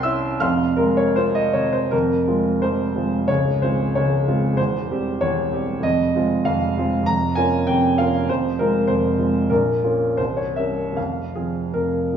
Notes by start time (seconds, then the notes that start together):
Already playing: C2 C5 G5 C6
0.03 C#4 E4 E5 E6
0.40 F1 F2 F5 C6 F6
0.77 G#3 A#4
0.97 C#5
1.16 C4 F4 C5
1.35 D#5
1.53 C3 C#5
1.73 C5
1.91 F1 F2 A#4
2.27 G#3 C4 F4
2.62 F1 F2 C5
2.96 G#3 C4 F4
3.28 C#1 C#2 C#5
3.62 G#3 C4 F4 C5
3.95 C#1 C#2 C#5
4.28 G#3 C4 F4
4.54 E1 C5
4.59 E2
4.90 G3 C4 G4
5.21 E1 E2 C#5
5.52 G3 C4 G4
5.80 F1 F2 D#5
6.15 G#3 C4 F4
6.45 F1 F2 F5
6.77 G#3 C4 F4
7.02 F2 A#5
7.07 F1
7.35 A#3 C#4 F4 G#5
7.67 F1 F2 G5
7.98 A#3 C#4 F4 F5
8.29 F1 F2 C5
8.59 G#3 C4 F4 A#4
8.88 F1 F2 C5
9.19 G#3 C4 F4
9.50 A#1 A#2 A#4
9.84 A#3 C#4 F4
10.17 C1 C2 C5
10.37 C#5
10.56 G3 C#4 A#4 E5
10.92 F1
10.97 F2 F5
11.35 F3 C4 G#4
11.74 F1 F2 A#4
12.13 F3 C4 G#4